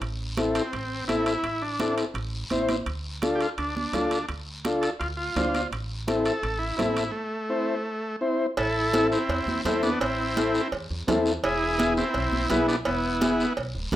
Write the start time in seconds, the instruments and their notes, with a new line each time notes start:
0.01 upright bass A1, high conga, high timbale, long guiro
0.37 transistor combo organ C4 E4 A4, high conga, high timbale, short guiro
0.55 transistor combo organ C4, high timbale, short guiro
0.73 upright bass A1, high conga, high timbale, long guiro
1.08 upright bass A1, transistor combo organ C4 E4 A4, high conga, high timbale, short guiro
1.26 transistor combo organ E4, high timbale, short guiro
1.43 upright bass A1, high conga, high timbale, long guiro
1.62 transistor combo organ D4
1.80 transistor combo organ C4 E4 A4, high conga, high timbale, short guiro
1.98 high timbale, short guiro
2.14 upright bass A1, high conga, high timbale, long guiro
2.50 upright bass A1, transistor combo organ C4 E4 C5, high conga, high timbale, short guiro
2.69 high conga, high timbale, short guiro
2.86 upright bass D2, high timbale, long guiro
3.22 transistor combo organ D4 F4 A4, high conga, high timbale, short guiro
3.35 transistor combo organ G4
3.41 transistor combo organ F4, high timbale, short guiro
3.58 upright bass D2, transistor combo organ D4, high conga, high timbale, long guiro
3.76 transistor combo organ D4, high conga
3.92 upright bass D2, transistor combo organ D4 F4 A4, high conga, high timbale, low timbale, short guiro
4.11 high timbale, short guiro
4.29 upright bass D2, high conga, high timbale, long guiro
4.65 transistor combo organ D4 F4 A4, high conga, high timbale, short guiro
4.82 transistor combo organ A4, high timbale, short guiro
5.00 upright bass D2, transistor combo organ F4, high conga, high timbale, long guiro
5.17 transistor combo organ F4
5.35 upright bass D2, transistor combo organ D4 F4 C5, high conga, high timbale, low timbale, short guiro
5.54 high conga, high timbale, short guiro
5.72 upright bass A1, high conga, high timbale, long guiro
6.07 transistor combo organ C4 E4 A4, high conga, high timbale, short guiro
6.25 transistor combo organ A4, high timbale, short guiro
6.43 upright bass A1, high conga, high timbale, long guiro
6.59 transistor combo organ E4
6.77 upright bass A1, transistor combo organ C4 E4 A4, high conga, high timbale, low timbale, short guiro
6.97 high conga, high timbale, short guiro
7.12 transistor combo organ A3
7.49 transistor combo organ C4 E4 C5
8.21 transistor combo organ C4 E4 C5
8.57 upright bass A1, transistor combo organ E4 A4, cowbell, high conga, long guiro
8.93 transistor combo organ C4 E4 A4, cowbell, high conga, short guiro
9.12 transistor combo organ C4 E4, short guiro
9.29 upright bass E2, cowbell, high conga, long guiro
9.46 upright bass E2, high conga
9.65 upright bass E2, transistor combo organ C4 E4 A4, cowbell, high conga, low timbale, short guiro
9.82 transistor combo organ B3 D4, high conga, short guiro
10.00 upright bass A1, transistor combo organ C4 E4, cowbell, high conga, long guiro
10.36 transistor combo organ C4 E4 A4, cowbell, high conga, short guiro
10.54 short guiro
10.72 upright bass E2, cowbell, high conga, long guiro
10.90 upright bass E2
11.07 upright bass E2, transistor combo organ C4 E4 A4, cowbell, high conga, low conga, low timbale, short guiro
11.26 short guiro
11.43 upright bass E1, transistor combo organ E4 G#4, cowbell, high conga, long guiro
11.78 transistor combo organ B3 E4 G#4, cowbell, high conga, short guiro
11.97 transistor combo organ C4 E4, short guiro
12.14 upright bass B1, cowbell, high conga, long guiro
12.32 upright bass B1, high conga
12.50 upright bass B1, transistor combo organ B3 E4 G#4, cowbell, high conga, low timbale, short guiro
12.68 transistor combo organ B3 D4, short guiro
12.85 upright bass E1, transistor combo organ B3 E4, cowbell, high conga, long guiro
13.21 transistor combo organ B3 E4 G#4, cowbell, high conga, short guiro
13.40 short guiro
13.57 upright bass B1, cowbell, high conga, long guiro
13.75 upright bass D1
13.92 upright bass E1, high conga, low conga